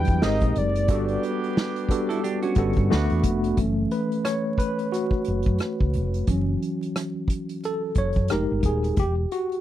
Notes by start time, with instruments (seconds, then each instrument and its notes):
Already playing: tine electric piano F#3 G3 D4 E4 F#4 B4, analog synth lead G5
0.05 fretless electric bass E2, kick, closed hi-hat
0.21 fretless electric bass G#1, tine electric piano G#3 C4 D#4 G4 A#4, horn section A#3 C4 D#4, analog synth lead D#5, snare
0.40 fretless electric bass A#1, kick, closed hi-hat
0.56 fretless electric bass F#1, analog synth lead D5, closed hi-hat
0.75 closed hi-hat
0.88 fretless electric bass G1, tine electric piano G3 B3 D4 F#4 A4, horn section B3 D4 G4, kick, closed hi-hat
1.08 closed hi-hat
1.23 closed hi-hat
1.44 closed hi-hat
1.57 snare
1.76 closed hi-hat
1.89 tine electric piano G3 B3 D4 F#4 A4, kick, closed hi-hat
2.09 clean electric guitar E4 A4, closed hi-hat
2.24 clean electric guitar D4 G4, closed hi-hat
2.43 clean electric guitar C#4 F#4, closed hi-hat
2.55 fretless electric bass G1, tine electric piano D3 G3 B3 F#4 A4, kick, closed hi-hat
2.73 kick, closed hi-hat
2.78 fretless electric bass G2
2.90 fretless electric bass D2, tine electric piano A3 B3 D4 F#4 B4, horn section B3 D4 F#4, snare
3.10 fretless electric bass E2, closed hi-hat
3.23 fretless electric bass F1, kick, closed hi-hat
3.44 closed hi-hat
3.57 fretless electric bass F#1, tine electric piano E3 A3 C#4, kick, closed hi-hat
3.91 tine electric piano B4, closed hi-hat
4.12 closed hi-hat
4.25 tine electric piano C#5, cross-stick, closed hi-hat
4.58 tine electric piano B4, kick, closed hi-hat
4.79 closed hi-hat
4.92 tine electric piano F#4, cross-stick, closed hi-hat
5.11 kick
5.25 fretless electric bass F#1, closed hi-hat
5.43 kick, closed hi-hat
5.47 fretless electric bass F#2
5.58 cross-stick, closed hi-hat
5.80 fretless electric bass C#2, kick
5.93 fretless electric bass F1, closed hi-hat
6.14 closed hi-hat
6.27 fretless electric bass F#1, tine electric piano E3 F#3 C#4, kick, closed hi-hat
6.62 closed hi-hat
6.83 closed hi-hat
6.96 cross-stick, closed hi-hat
7.28 kick, closed hi-hat
7.49 closed hi-hat
7.64 tine electric piano A4, cross-stick, closed hi-hat
7.95 fretless electric bass F#1, tine electric piano C#5, kick, closed hi-hat
8.13 kick, closed hi-hat
8.17 fretless electric bass F#2
8.28 fretless electric bass F1, tine electric piano G#3 D#4 G4 A#4, cross-stick, closed hi-hat
8.51 fretless electric bass G1
8.63 fretless electric bass D#1, tine electric piano G#4, kick, closed hi-hat
8.83 cross-stick, closed hi-hat
8.97 fretless electric bass E1, tine electric piano G4, kick, closed hi-hat
9.31 tine electric piano F#4, closed hi-hat
9.52 closed hi-hat